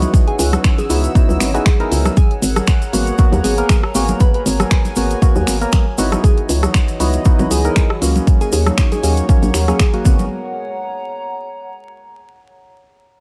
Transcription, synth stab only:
Already playing: B3 D#4 E4 F#4
0.90 B3 D#4 E4 F#4
1.15 B3 D#4 E4 F#4
1.54 B3 D#4 E4 F#4
1.80 B3 D#4 E4 A#4
2.93 A#3 B3 F#4
3.18 A#3 B3 F#4
3.58 A#3 B3 A#4
3.95 A#3 B3 F#4
4.96 A#3 B3 F#4
5.22 A#3 B3 F#4
5.61 A#3 B3 A#4
5.98 B3 D#4 E4 F#4
7.00 B3 D#4 E4 F#4
7.25 B3 D#4 E4 F#4
7.64 B3 D#4 E4 A#4
8.01 F#3 A#3 C#4
9.03 F#3 A#3 C#4
9.29 F#3 A#3 C#4
9.68 F#3 A#3 C#4
9.93 F#3 A#3 F#4
10.05 A#3 B3 F#4

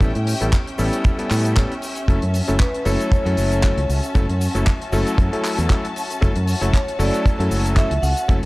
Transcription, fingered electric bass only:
0.01 A1
0.16 A2
0.41 A1
0.79 A1
1.31 A2
2.08 F#1
2.23 F#2
2.49 F#1
2.86 F#1
3.11 muted fingered electric bass stroke
3.26 F#2
3.38 F#1
3.77 C#2
3.89 C#2
4.15 F#1
4.29 F#2
4.55 F#1
4.92 F#1
5.18 F#2
5.58 E2
6.22 F#1
6.36 F#2
6.62 F#1
6.99 F#1
7.26 muted fingered electric bass stroke
7.39 F#2
7.51 F#1
7.91 C#2
8.03 C#2
8.29 F#1

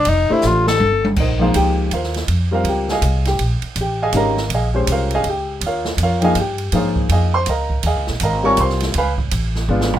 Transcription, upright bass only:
0.06 F1
0.30 muted upright bass stroke
0.43 A1
0.80 G1
1.17 A#1
1.55 C#2
1.91 D#2
2.28 F2
2.64 C#2
3.02 C2
3.39 A#1
3.62 muted upright bass stroke
3.76 A1
4.13 G#1
4.50 A#1
4.87 C2
5.24 C#2
5.61 D#2
5.97 F2
6.35 G2
6.72 G#2
7.09 F2
7.47 C#2
7.83 D#2
7.96 C#2
8.09 A#1
8.21 G#1
8.58 C2
8.95 C#2
9.32 A1
9.69 G#1

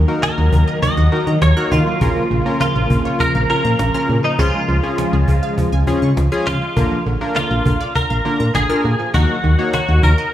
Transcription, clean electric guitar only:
0.23 A#4
0.83 D#5
1.42 C#5
1.72 F4
2.61 F4
3.20 A#4
3.50 A#4
4.24 D#4
4.39 F4
6.47 F4
7.36 F4
7.96 A#4
8.55 G#4
9.14 F#4
9.74 F#4
10.03 A#4

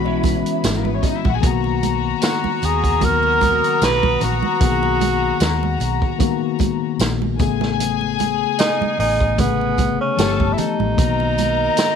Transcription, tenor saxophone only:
2.23 F#4
2.65 G#4
3.04 A#4
3.84 B4
4.24 F#4
8.59 D#4
8.99 D#4
9.39 B3
10.01 C#4
10.53 E4
10.58 D#4

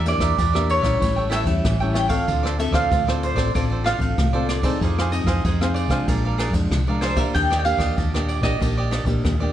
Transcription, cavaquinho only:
0.06 muted cavaquinho stroke
0.20 A#4 D5 E5
0.37 G4 A#4 D5 E5
0.53 A#4 D5 E5
0.81 A#4 D5 E5
0.99 E4 A4 C#5 G5
1.16 A4 C#5 G5
1.30 E4 A4 C#5 G5
1.45 muted cavaquinho stroke
1.80 A4 C#5 G5
1.93 E4 A4 C#5 G5
2.08 A4 C#5 G5
2.27 F4 A4 C5 D5
2.43 A4 C5 D5
2.59 muted cavaquinho stroke
2.72 A4 C5 D5
2.91 F4 A4 C5 D5
3.07 A4 C5 D5
3.36 A4 C5 D5
3.54 F4 A4 C5 D5
3.70 A4 C5 D5
3.84 F4 A4 C5 D5
3.99 muted cavaquinho stroke
4.33 A4 C5 D5
4.49 F4 A4 C5 D5
4.63 A4 C5 D5
4.82 D#4 G#4 C5 F5
4.99 G#4 C5 F5
5.13 muted cavaquinho stroke
5.27 G#4 C5 F5
5.45 D#4 G#4 C5 F5
5.61 G#4 C5 F5
5.90 G#4 C5 F5
6.08 G#4 A#4 D5 F5
6.25 A#4 D5 F5
6.38 G#4 A#4 D5 F5
6.54 muted cavaquinho stroke
6.88 A#4 D5 F5
7.02 G#4 A#4 D5 F5
7.17 A#4 D5 F5
7.34 D4 G4 D5 D#5
7.50 G4 D5 D#5
7.64 muted cavaquinho stroke
7.78 G4 D5 D#5
7.96 D4 G4 D5 D#5
8.14 G4 D5 D#5
8.43 G4 D5 D#5
8.60 D4 G4 D5 D#5
8.78 G4 D5 D#5
8.91 D4 G4 D5 D#5
9.06 muted cavaquinho stroke
9.40 G4 D5 D#5

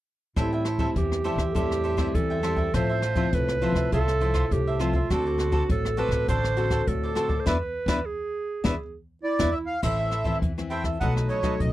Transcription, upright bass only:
0.37 A1
0.96 E2
1.36 E2
1.55 E2
2.15 E2
2.74 A1
3.33 C2
3.72 C2
3.92 C2
4.51 C2
5.10 D2
5.69 A1
6.09 A1
6.28 A1
6.87 D2
7.47 E2
7.86 E2
8.65 E2
9.40 E2
9.83 A1
10.42 E2
11.01 B1
11.60 B1

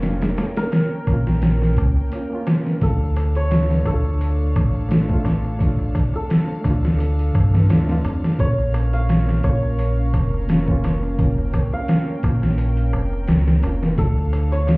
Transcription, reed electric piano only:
Already playing: C#4 F4
0.00 A#3 C#4
0.09 F4
1.03 A#3
1.08 C#4
1.13 F4
2.11 A#3 C#4
2.15 F4
2.30 A#3 C#4
2.35 F4
2.78 A3
2.83 D4
2.88 F4
3.82 A3
3.87 D4
3.92 F4
4.89 A3 D4
4.94 F4
5.09 A3 D4
5.14 F4
5.57 A3
5.62 D4
5.66 F4
6.61 A3
6.66 D4
6.70 F4
7.68 A3 D4
7.72 F4
7.86 A3 D4
7.91 F4
8.35 A#3
8.40 C#4
8.45 F4
9.40 A#3
9.45 C#4
9.50 F4
10.47 A#3 C#4
10.52 F4
10.67 A#3 C#4
10.72 F4
11.15 A#3
11.20 C#4
11.25 F4
12.19 A#3
12.24 C#4
12.29 F4
13.62 A#3 C#4
13.67 F4
13.94 A3
13.99 D4
14.04 F4

